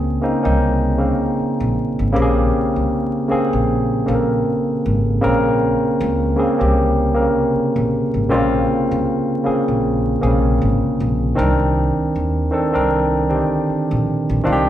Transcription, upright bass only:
0, 0, Header, 1, 3, 480
1, 0, Start_track
1, 0, Tempo, 769231
1, 1334, Time_signature, 4, 2, 24, 8
1, 9169, End_track
2, 0, Start_track
2, 0, Title_t, "Upright bass"
2, 0, Program_c, 0, 32
2, 0, Note_on_c, 0, 37, 83
2, 107, Note_off_c, 0, 37, 0
2, 281, Note_on_c, 0, 36, 87
2, 687, Note_off_c, 0, 36, 0
2, 1000, Note_on_c, 0, 34, 85
2, 1086, Note_off_c, 0, 34, 0
2, 1242, Note_on_c, 0, 32, 80
2, 1327, Note_off_c, 0, 32, 0
2, 1349, Note_on_c, 0, 34, 100
2, 1549, Note_off_c, 0, 34, 0
2, 1724, Note_on_c, 0, 36, 78
2, 1808, Note_off_c, 0, 36, 0
2, 2203, Note_on_c, 0, 34, 85
2, 2493, Note_off_c, 0, 34, 0
2, 2547, Note_on_c, 0, 34, 91
2, 2747, Note_off_c, 0, 34, 0
2, 3030, Note_on_c, 0, 32, 86
2, 3229, Note_off_c, 0, 32, 0
2, 3269, Note_on_c, 0, 34, 90
2, 3584, Note_off_c, 0, 34, 0
2, 3747, Note_on_c, 0, 37, 100
2, 3948, Note_off_c, 0, 37, 0
2, 4123, Note_on_c, 0, 36, 84
2, 4529, Note_off_c, 0, 36, 0
2, 4841, Note_on_c, 0, 34, 87
2, 4926, Note_off_c, 0, 34, 0
2, 5079, Note_on_c, 0, 32, 77
2, 5187, Note_off_c, 0, 32, 0
2, 5187, Note_on_c, 0, 34, 97
2, 5387, Note_off_c, 0, 34, 0
2, 5562, Note_on_c, 0, 36, 91
2, 5647, Note_off_c, 0, 36, 0
2, 6041, Note_on_c, 0, 34, 78
2, 6332, Note_off_c, 0, 34, 0
2, 6384, Note_on_c, 0, 34, 92
2, 6586, Note_off_c, 0, 34, 0
2, 6624, Note_on_c, 0, 32, 85
2, 6735, Note_off_c, 0, 32, 0
2, 6865, Note_on_c, 0, 34, 87
2, 7066, Note_off_c, 0, 34, 0
2, 7105, Note_on_c, 0, 36, 101
2, 7421, Note_off_c, 0, 36, 0
2, 7585, Note_on_c, 0, 39, 82
2, 7786, Note_off_c, 0, 39, 0
2, 7959, Note_on_c, 0, 36, 78
2, 8366, Note_off_c, 0, 36, 0
2, 8680, Note_on_c, 0, 34, 91
2, 8766, Note_off_c, 0, 34, 0
2, 8919, Note_on_c, 0, 34, 86
2, 9005, Note_off_c, 0, 34, 0
2, 9027, Note_on_c, 0, 36, 92
2, 9169, Note_off_c, 0, 36, 0
2, 9169, End_track
3, 0, Start_track
3, 0, Title_t, "Muted upright bass strokes"
3, 867, Note_on_c, 9, 29, 40
3, 930, Note_off_c, 9, 29, 0
3, 2070, Note_on_c, 9, 29, 46
3, 2132, Note_off_c, 9, 29, 0
3, 4707, Note_on_c, 9, 29, 38
3, 4770, Note_off_c, 9, 29, 0
3, 5907, Note_on_c, 9, 29, 43
3, 5969, Note_off_c, 9, 29, 0
3, 8548, Note_on_c, 9, 29, 44
3, 8610, Note_off_c, 9, 29, 0
3, 9169, End_track
0, 0, End_of_file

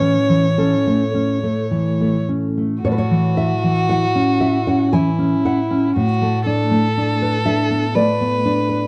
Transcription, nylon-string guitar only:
0, 0, Header, 1, 2, 480
1, 0, Start_track
1, 0, Key_signature, 3, "major"
1, 0, Tempo, 1140684
1, 1192, Tempo, 1039861
1, 1193, Time_signature, 3, 2, 24, 8
1, 2632, Tempo, 988468
1, 4051, End_track
2, 0, Start_track
2, 0, Title_t, "Nylon-string guitar"
2, 0, Program_c, 0, 24
2, 0, Note_on_c, 0, 45, 62
2, 0, Note_on_c, 0, 52, 48
2, 0, Note_on_c, 0, 61, 47
2, 0, Note_on_c, 0, 71, 96
2, 69, Note_off_c, 0, 52, 0
2, 123, Note_on_c, 0, 52, 45
2, 191, Note_off_c, 0, 61, 0
2, 221, Note_off_c, 0, 71, 0
2, 244, Note_on_c, 0, 69, 53
2, 245, Note_on_c, 0, 61, 47
2, 313, Note_off_c, 0, 52, 0
2, 366, Note_on_c, 0, 57, 47
2, 433, Note_off_c, 0, 61, 0
2, 479, Note_off_c, 0, 57, 0
2, 480, Note_on_c, 0, 61, 48
2, 601, Note_off_c, 0, 61, 0
2, 603, Note_on_c, 0, 57, 44
2, 702, Note_off_c, 0, 69, 0
2, 720, Note_on_c, 0, 52, 39
2, 790, Note_off_c, 0, 57, 0
2, 844, Note_on_c, 0, 57, 39
2, 910, Note_off_c, 0, 52, 0
2, 962, Note_on_c, 0, 61, 46
2, 1034, Note_off_c, 0, 57, 0
2, 1084, Note_on_c, 0, 57, 38
2, 1150, Note_off_c, 0, 61, 0
2, 1180, Note_off_c, 0, 45, 0
2, 1196, Note_off_c, 0, 57, 0
2, 1197, Note_on_c, 0, 45, 56
2, 1199, Note_on_c, 0, 73, 74
2, 1228, Note_off_c, 0, 73, 0
2, 1231, Note_on_c, 0, 71, 63
2, 1259, Note_off_c, 0, 71, 0
2, 1261, Note_on_c, 0, 73, 73
2, 1320, Note_on_c, 0, 52, 43
2, 1431, Note_off_c, 0, 73, 0
2, 1440, Note_on_c, 0, 64, 45
2, 1441, Note_on_c, 0, 76, 72
2, 1511, Note_off_c, 0, 52, 0
2, 1564, Note_on_c, 0, 52, 36
2, 1631, Note_off_c, 0, 64, 0
2, 1669, Note_off_c, 0, 76, 0
2, 1681, Note_on_c, 0, 78, 70
2, 1683, Note_on_c, 0, 64, 48
2, 1753, Note_off_c, 0, 52, 0
2, 1801, Note_on_c, 0, 61, 43
2, 1874, Note_off_c, 0, 64, 0
2, 1911, Note_off_c, 0, 78, 0
2, 1918, Note_on_c, 0, 76, 67
2, 1921, Note_on_c, 0, 64, 44
2, 1994, Note_off_c, 0, 61, 0
2, 2039, Note_off_c, 0, 76, 0
2, 2040, Note_on_c, 0, 61, 45
2, 2041, Note_on_c, 0, 78, 72
2, 2113, Note_off_c, 0, 64, 0
2, 2157, Note_off_c, 0, 78, 0
2, 2159, Note_on_c, 0, 80, 80
2, 2163, Note_on_c, 0, 52, 43
2, 2232, Note_off_c, 0, 61, 0
2, 2278, Note_on_c, 0, 61, 43
2, 2352, Note_off_c, 0, 52, 0
2, 2387, Note_off_c, 0, 80, 0
2, 2400, Note_on_c, 0, 64, 48
2, 2402, Note_on_c, 0, 78, 69
2, 2467, Note_off_c, 0, 61, 0
2, 2519, Note_on_c, 0, 61, 44
2, 2588, Note_off_c, 0, 64, 0
2, 2617, Note_off_c, 0, 45, 0
2, 2635, Note_off_c, 0, 61, 0
2, 2636, Note_on_c, 0, 45, 61
2, 2761, Note_on_c, 0, 57, 45
2, 2879, Note_on_c, 0, 62, 55
2, 2956, Note_off_c, 0, 57, 0
2, 3000, Note_on_c, 0, 57, 40
2, 3075, Note_off_c, 0, 62, 0
2, 3128, Note_on_c, 0, 62, 44
2, 3195, Note_off_c, 0, 57, 0
2, 3248, Note_on_c, 0, 71, 49
2, 3318, Note_off_c, 0, 62, 0
2, 3345, Note_off_c, 0, 78, 0
2, 3362, Note_on_c, 0, 76, 79
2, 3365, Note_on_c, 0, 62, 47
2, 3436, Note_off_c, 0, 71, 0
2, 3483, Note_on_c, 0, 59, 46
2, 3553, Note_off_c, 0, 62, 0
2, 3589, Note_off_c, 0, 76, 0
2, 3603, Note_on_c, 0, 74, 73
2, 3605, Note_on_c, 0, 57, 49
2, 3671, Note_off_c, 0, 59, 0
2, 3727, Note_on_c, 0, 59, 46
2, 3792, Note_off_c, 0, 57, 0
2, 3847, Note_on_c, 0, 62, 49
2, 3912, Note_off_c, 0, 59, 0
2, 3962, Note_on_c, 0, 71, 44
2, 4032, Note_off_c, 0, 62, 0
2, 4051, Note_off_c, 0, 45, 0
2, 4051, Note_off_c, 0, 71, 0
2, 4051, Note_off_c, 0, 74, 0
2, 4051, End_track
0, 0, End_of_file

